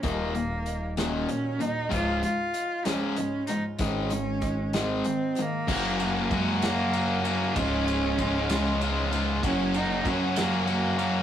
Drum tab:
CC |------|------|------|x-----|
RD |------|------|------|-xxxxx|
HH |xxxxxx|xxxxxx|xxxxxx|------|
SD |---o--|---o--|---o--|---o--|
BD |o-----|o-----|o-o---|o-o---|

CC |------|------|
RD |xxxxxx|xxxxxx|
HH |------|------|
SD |---o--|---o--|
BD |o-o---|o-o---|